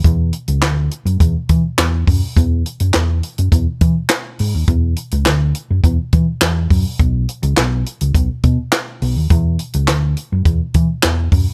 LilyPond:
<<
  \new Staff \with { instrumentName = "Fingered electric bass" } { \clef bass \time 4/4 \key e \lydian \tempo 4 = 104 e,8 r16 cis,16 d,8 r16 fis,16 e,16 r16 e16 r16 e,8 fis,16 r16 | e,8 r16 fis,16 e,8 r16 fis,16 e,16 r16 e16 r8. gis,16 dis,16 | e,8 r16 cis,16 d,8 r16 fis,16 e,16 r16 e16 r16 e,8 fis,16 r16 | b,,8 r16 cis,16 b,,8 r16 cis,16 b,,16 r16 b,16 r8. b,,16 dis,16 |
e,8 r16 cis,16 d,8 r16 fis,16 e,16 r16 e16 r16 e,8 fis,16 r16 | }
  \new DrumStaff \with { instrumentName = "Drums" } \drummode { \time 4/4 <hh bd>8 hh16 hh16 <hc hh sn>8 hh16 hh16 <hh bd>8 <hh bd>8 <hc hh sn>8 <hho bd>8 | <hh bd>8 hh16 hh16 <hc hh sn>8 hh16 hh16 <hh bd>8 <hh bd>8 <hc hh sn>8 hho8 | <hh bd>8 hh16 hh16 <hc hh sn>8 hh8 <hh bd>8 <hh bd>8 <hc hh sn>8 <hho bd>8 | <hh bd>8 hh16 hh16 <hc hh sn>8 hh16 hh16 <hh bd>8 <hh bd>8 <hc hh sn>8 hho8 |
<hh bd>8 hh16 hh16 <hc hh sn>8 hh8 <hh bd>8 <hh bd>8 <hc hh sn>8 <hho bd>8 | }
>>